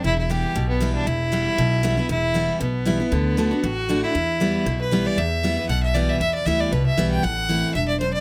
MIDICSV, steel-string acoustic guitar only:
0, 0, Header, 1, 2, 480
1, 0, Start_track
1, 0, Key_signature, 1, "minor"
1, 0, Tempo, 256849
1, 80, Time_signature, 4, 2, 24, 8
1, 15334, End_track
2, 0, Start_track
2, 0, Title_t, "Steel-string acoustic guitar"
2, 0, Program_c, 0, 25
2, 80, Note_on_c, 0, 40, 85
2, 553, Note_on_c, 0, 52, 77
2, 568, Note_on_c, 0, 55, 72
2, 576, Note_on_c, 0, 59, 90
2, 587, Note_on_c, 0, 64, 85
2, 996, Note_off_c, 0, 40, 0
2, 1014, Note_off_c, 0, 52, 0
2, 1021, Note_off_c, 0, 55, 0
2, 1026, Note_off_c, 0, 59, 0
2, 1031, Note_off_c, 0, 64, 0
2, 1038, Note_on_c, 0, 47, 97
2, 1503, Note_on_c, 0, 52, 91
2, 1518, Note_on_c, 0, 55, 90
2, 1528, Note_on_c, 0, 59, 88
2, 1540, Note_on_c, 0, 64, 95
2, 1954, Note_off_c, 0, 47, 0
2, 1969, Note_off_c, 0, 52, 0
2, 1976, Note_off_c, 0, 55, 0
2, 1981, Note_off_c, 0, 59, 0
2, 1987, Note_off_c, 0, 64, 0
2, 1999, Note_on_c, 0, 40, 87
2, 2462, Note_on_c, 0, 52, 79
2, 2477, Note_on_c, 0, 55, 95
2, 2487, Note_on_c, 0, 59, 97
2, 2498, Note_on_c, 0, 64, 83
2, 2914, Note_off_c, 0, 40, 0
2, 2928, Note_off_c, 0, 52, 0
2, 2935, Note_off_c, 0, 55, 0
2, 2941, Note_off_c, 0, 59, 0
2, 2946, Note_off_c, 0, 64, 0
2, 2959, Note_on_c, 0, 47, 99
2, 3422, Note_on_c, 0, 52, 96
2, 3430, Note_on_c, 0, 55, 88
2, 3443, Note_on_c, 0, 59, 95
2, 3451, Note_on_c, 0, 64, 112
2, 3664, Note_off_c, 0, 64, 0
2, 3679, Note_off_c, 0, 52, 0
2, 3683, Note_off_c, 0, 55, 0
2, 3686, Note_on_c, 0, 64, 64
2, 3690, Note_off_c, 0, 59, 0
2, 3720, Note_on_c, 0, 59, 51
2, 3874, Note_off_c, 0, 47, 0
2, 3903, Note_off_c, 0, 64, 0
2, 3909, Note_on_c, 0, 40, 94
2, 3919, Note_off_c, 0, 59, 0
2, 4373, Note_on_c, 0, 52, 76
2, 4389, Note_on_c, 0, 55, 78
2, 4401, Note_on_c, 0, 59, 95
2, 4411, Note_on_c, 0, 64, 90
2, 4828, Note_off_c, 0, 40, 0
2, 4843, Note_off_c, 0, 52, 0
2, 4850, Note_off_c, 0, 55, 0
2, 4857, Note_off_c, 0, 59, 0
2, 4862, Note_off_c, 0, 64, 0
2, 4868, Note_on_c, 0, 47, 94
2, 5335, Note_on_c, 0, 52, 89
2, 5345, Note_on_c, 0, 55, 88
2, 5357, Note_on_c, 0, 59, 90
2, 5367, Note_on_c, 0, 64, 111
2, 5577, Note_off_c, 0, 64, 0
2, 5595, Note_off_c, 0, 52, 0
2, 5599, Note_on_c, 0, 64, 60
2, 5601, Note_off_c, 0, 55, 0
2, 5607, Note_off_c, 0, 59, 0
2, 5631, Note_on_c, 0, 59, 52
2, 5788, Note_off_c, 0, 47, 0
2, 5819, Note_off_c, 0, 64, 0
2, 5827, Note_on_c, 0, 50, 90
2, 5835, Note_off_c, 0, 59, 0
2, 6280, Note_off_c, 0, 50, 0
2, 6303, Note_on_c, 0, 50, 75
2, 6315, Note_on_c, 0, 57, 91
2, 6327, Note_on_c, 0, 62, 88
2, 6339, Note_on_c, 0, 66, 89
2, 6536, Note_off_c, 0, 66, 0
2, 6559, Note_off_c, 0, 50, 0
2, 6559, Note_on_c, 0, 66, 54
2, 6565, Note_off_c, 0, 57, 0
2, 6571, Note_off_c, 0, 62, 0
2, 6592, Note_on_c, 0, 62, 50
2, 6778, Note_off_c, 0, 66, 0
2, 6794, Note_on_c, 0, 45, 89
2, 6795, Note_off_c, 0, 62, 0
2, 7265, Note_on_c, 0, 50, 88
2, 7277, Note_on_c, 0, 57, 88
2, 7288, Note_on_c, 0, 62, 98
2, 7299, Note_on_c, 0, 66, 99
2, 7711, Note_off_c, 0, 45, 0
2, 7728, Note_off_c, 0, 50, 0
2, 7734, Note_off_c, 0, 57, 0
2, 7740, Note_off_c, 0, 62, 0
2, 7745, Note_off_c, 0, 66, 0
2, 7751, Note_on_c, 0, 40, 82
2, 8224, Note_on_c, 0, 52, 72
2, 8239, Note_on_c, 0, 55, 92
2, 8248, Note_on_c, 0, 59, 94
2, 8257, Note_on_c, 0, 64, 84
2, 8670, Note_off_c, 0, 40, 0
2, 8688, Note_off_c, 0, 52, 0
2, 8695, Note_off_c, 0, 55, 0
2, 8700, Note_off_c, 0, 59, 0
2, 8704, Note_off_c, 0, 64, 0
2, 8716, Note_on_c, 0, 47, 96
2, 9183, Note_on_c, 0, 52, 81
2, 9200, Note_on_c, 0, 55, 97
2, 9209, Note_on_c, 0, 59, 92
2, 9218, Note_on_c, 0, 64, 94
2, 9632, Note_off_c, 0, 47, 0
2, 9648, Note_off_c, 0, 52, 0
2, 9656, Note_off_c, 0, 55, 0
2, 9661, Note_off_c, 0, 59, 0
2, 9665, Note_off_c, 0, 64, 0
2, 9679, Note_on_c, 0, 40, 97
2, 10153, Note_on_c, 0, 52, 83
2, 10166, Note_on_c, 0, 55, 81
2, 10176, Note_on_c, 0, 59, 91
2, 10185, Note_on_c, 0, 64, 100
2, 10388, Note_off_c, 0, 64, 0
2, 10405, Note_off_c, 0, 52, 0
2, 10411, Note_off_c, 0, 55, 0
2, 10411, Note_on_c, 0, 64, 55
2, 10417, Note_off_c, 0, 59, 0
2, 10449, Note_on_c, 0, 59, 49
2, 10594, Note_off_c, 0, 40, 0
2, 10625, Note_off_c, 0, 64, 0
2, 10640, Note_on_c, 0, 47, 86
2, 10644, Note_off_c, 0, 59, 0
2, 11111, Note_on_c, 0, 52, 77
2, 11124, Note_on_c, 0, 55, 93
2, 11138, Note_on_c, 0, 59, 93
2, 11143, Note_on_c, 0, 64, 81
2, 11555, Note_off_c, 0, 47, 0
2, 11573, Note_off_c, 0, 52, 0
2, 11579, Note_off_c, 0, 55, 0
2, 11586, Note_off_c, 0, 59, 0
2, 11589, Note_off_c, 0, 64, 0
2, 11602, Note_on_c, 0, 40, 82
2, 12065, Note_on_c, 0, 52, 78
2, 12079, Note_on_c, 0, 55, 90
2, 12092, Note_on_c, 0, 59, 90
2, 12104, Note_on_c, 0, 64, 94
2, 12516, Note_off_c, 0, 40, 0
2, 12530, Note_off_c, 0, 52, 0
2, 12537, Note_off_c, 0, 55, 0
2, 12544, Note_off_c, 0, 59, 0
2, 12549, Note_off_c, 0, 64, 0
2, 12568, Note_on_c, 0, 47, 90
2, 13035, Note_on_c, 0, 52, 103
2, 13047, Note_on_c, 0, 55, 95
2, 13060, Note_on_c, 0, 59, 108
2, 13065, Note_on_c, 0, 64, 94
2, 13480, Note_off_c, 0, 47, 0
2, 13495, Note_off_c, 0, 52, 0
2, 13501, Note_off_c, 0, 55, 0
2, 13508, Note_off_c, 0, 59, 0
2, 13511, Note_off_c, 0, 64, 0
2, 13527, Note_on_c, 0, 45, 84
2, 13992, Note_on_c, 0, 52, 72
2, 14003, Note_on_c, 0, 57, 80
2, 14016, Note_on_c, 0, 60, 88
2, 14025, Note_on_c, 0, 64, 88
2, 14440, Note_off_c, 0, 45, 0
2, 14454, Note_off_c, 0, 52, 0
2, 14460, Note_off_c, 0, 57, 0
2, 14467, Note_off_c, 0, 60, 0
2, 14471, Note_off_c, 0, 64, 0
2, 14485, Note_on_c, 0, 43, 87
2, 14941, Note_off_c, 0, 43, 0
2, 14967, Note_on_c, 0, 42, 91
2, 15334, Note_off_c, 0, 42, 0
2, 15334, End_track
0, 0, End_of_file